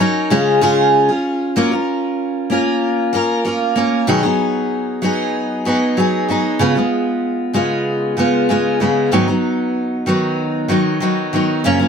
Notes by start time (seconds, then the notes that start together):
0.00 F#3 C#4 D#4 A#4
0.30 C#3 G#3 C#4 F4 G#4
0.61 C#3 G#3 C#4 F4 G#4
1.09 C#4 F4 G#4
1.56 F#3 A#3 C#4 F4 A#4
1.71 C#4 F4 A#4
2.50 A#3 C#4 F4 A#4
3.13 A#3 C#4 F4 A#4
3.45 A#3 C#4 F4 A#4
3.76 A#3 C#4 F4 A#4
4.07 B2 D#3 F#3 B3 D#4 G#4
4.23 F#3 B3 D#4 G#4
5.02 F#3 B3 D#4 G#4
5.65 F#3 B3 D#4 G#4
5.97 F#3 B3 D#4 G#4
6.29 F#3 B3 D#4 G#4
6.59 C#3 G#3 B3 F4
6.75 G#3 B3 F4
7.53 C#3 G#3 B3 F4
8.17 C#3 G#3 B3 F4
8.49 C#3 G#3 B3 F4
8.80 C#3 G#3 B3 F4
9.12 G#2 D#3 F#3 B3 D#4
9.28 F#3 B3 D#4
10.06 D#3 F#3 B3 D#4
10.68 D#3 F#3 B3 D#4
11.00 D#3 F#3 B3 D#4
11.33 D#3 F#3 B3 D#4
11.64 F#2 C#3 F3 A#3 C#4
11.79 F3 A#3 C#4